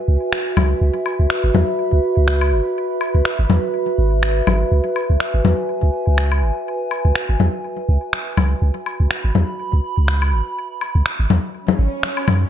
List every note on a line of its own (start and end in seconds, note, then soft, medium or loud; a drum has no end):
0.00 12.50 F#4 medium
0.00 12.50 B4 medium
0.00 12.50 E5 loud
0.00 1.13 G#5 medium
0.08 0.17 C#2 loud
0.33 finger snap medium
0.57 0.74 C#2 medium
0.57 low conga medium
0.57 low woodblock medium
0.81 0.91 C#2 medium
1.06 low woodblock medium
1.10 5.03 B5 medium
1.19 1.27 C#2 loud
1.30 finger snap medium
1.44 1.51 G#1 medium
1.54 1.64 E2 medium
1.54 low conga medium
1.93 2.00 C#2 medium
2.17 2.54 C#2 medium
2.28 finger snap medium
2.41 low woodblock medium
2.52 2.61 G#1 medium
3.01 low woodblock medium
3.15 3.22 C#2 loud
3.25 finger snap medium
3.39 3.46 G#1 loud
3.50 3.59 E2 medium
3.50 low conga medium
3.98 4.42 G#1 loud
4.23 finger snap medium
4.47 4.65 G#1 medium
4.47 low conga medium
4.47 low woodblock medium
4.72 4.81 C#2 loud
4.96 low woodblock medium
5.00 8.93 G#5 medium
5.10 5.17 C#2 loud
5.20 finger snap medium
5.34 5.41 G#1 medium
5.45 5.54 E2 medium
5.45 low conga medium
5.83 5.90 C#2 medium
6.07 6.44 C#2 medium
6.18 finger snap medium
6.32 low woodblock medium
6.42 6.52 G#1 medium
6.91 low woodblock medium
7.05 7.12 C#2 loud
7.15 finger snap medium
7.29 7.36 G#1 medium
7.40 7.49 E2 medium
7.40 low conga medium
7.89 7.98 C#2 loud
8.13 finger snap medium
8.37 8.55 C#2 medium
8.37 low conga medium
8.37 low woodblock medium
8.62 8.71 C#2 medium
8.86 low woodblock medium
8.91 12.50 B5 medium
9.00 9.07 C#2 loud
9.11 finger snap medium
9.24 9.32 G#1 medium
9.35 9.44 E2 medium
9.35 low conga medium
9.73 9.80 C#2 medium
9.98 10.34 C#2 medium
10.08 finger snap medium
10.22 low woodblock medium
10.33 10.42 G#1 medium
10.81 low woodblock medium
10.95 11.02 C#2 loud
11.06 finger snap medium
11.20 11.27 G#1 loud
11.30 11.39 E2 medium
11.30 low conga medium
11.55 swell medium
11.68 low conga medium
11.79 11.88 G#1 loud
12.03 finger snap medium
12.17 low woodblock medium
12.28 12.45 F#2 medium
12.28 low conga medium
12.28 low woodblock medium